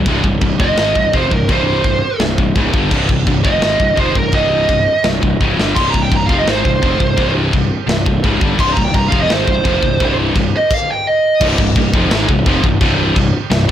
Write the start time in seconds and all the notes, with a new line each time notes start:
0.06 C1 C2 G2 C3, kick, china
0.24 C1 C2 G2, kick
0.41 C1 C2 G2, kick, china
0.60 F1 F2 C3 F3 D#5, kick
0.77 G#1 G#2 D#3 G#3, snare, china
0.95 C1 C2 G2, kick
1.13 F1 F2 C3 F3 C5, kick, china
1.31 C1 C2 G2 A#4, kick
1.48 C1 C2 G2 C3, kick, china
1.52 C5
1.84 C1 C2 G2, kick, china
2.20 C1 C2 G2, snare, china
2.38 C1 C2 G2, kick
2.55 C#1 C#2 G#2 C#3, kick, china
2.73 G1 G2 D3 G3, kick
2.91 C1 C2 G2 C3, kick, china, crash
3.09 C1 C2 G2, kick
3.27 C1 C2 G2, kick, china
3.44 F1 F2 C3 F3 D#5, kick
3.61 G#1 G#2 D#3 G#3, snare, china
3.79 C1 C2 G2, kick
3.96 F1 F2 C3 F3 C5, kick, china
4.15 C1 C2 G2 A#4, kick
4.32 C1 C2 G2 C3 D#5, kick, china
4.69 C1 C2 G2, kick, china
5.04 C1 C2 G2, snare, china
5.21 C1 C2 G2, kick
5.40 C#1 C#2 G#2 C#3, kick
5.58 G1 G2 D3 G3, snare
5.75 C1 C2 G2 C3 C6, kick, china, crash
5.90 A#5
5.94 C1 C2 G2, kick
6.02 G5
6.12 C1 C2 G2, kick, china
6.16 A#5
6.26 F1 F2 C3 F5, kick
6.30 F3
6.38 D#5
6.46 G#1 G#2 D#3 G#3 C5, snare, china
6.61 C5
6.65 C1 C2 G2, kick
6.82 F1 F2 C3 F3, kick, china
7.00 C1 C2 G2, kick
7.17 C1 C2 G2 C3, kick, china
7.53 C1 C2 G2, kick, china
7.87 C1 C2 G2, snare, china
8.06 C1 C2 G2, kick
8.24 C#1 C#2 G#2 C#3, kick, china
8.41 G1 G2 D3 G3, kick
8.58 C1 C2 G2 C3 C6, kick, crash, china
8.73 C2 G2 A#5, kick
8.77 C1
8.84 G5
8.94 C1 C2 G2 A#5, kick, china
9.08 F2 C3 F3 F5, kick
9.13 F1
9.21 D#5
9.28 G#1 G#2 D#3 G#3 C5, snare, china
9.45 C1 C2 G2 C5, kick
9.64 F1 F2 C3 F3, kick, china
9.82 C1 C2 G2, kick
10.00 C1 C2 G2 C3, kick, china
10.36 C1 C2 G2, kick, china
10.57 D#5
10.71 F5, kick, crash
10.90 G5
11.07 D#5
11.41 C1 C2 G2 C3, kick, crash, china
11.58 C1 C2 G2, kick
11.76 C1 C2 G2, kick, china
11.94 F1 F2 C3 F3, kick
12.11 G#1 G#2 D#3 G#3, snare, china
12.29 C1 C2 G2, kick
12.46 F1 F2 C3 F3, kick, china
12.63 C1 C2 G2, kick
12.81 C1 C2 G2 C3, kick, china
13.16 C1 C2 G2, kick, china
13.50 C1 C2 G2, snare, china
13.68 C2